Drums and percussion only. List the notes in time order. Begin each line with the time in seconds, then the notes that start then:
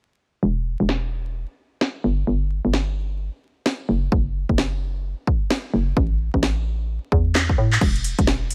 0.89 snare
1.81 snare
2.73 snare
3.66 snare
4.12 kick
4.49 kick
4.58 snare
5.27 kick
5.50 snare
5.97 kick
6.34 kick
6.43 snare
7.12 kick
7.35 snare, clap
7.49 kick
7.72 clap
7.81 kick, crash
7.96 closed hi-hat
8.04 open hi-hat
8.19 kick, closed hi-hat
8.27 snare
8.51 open hi-hat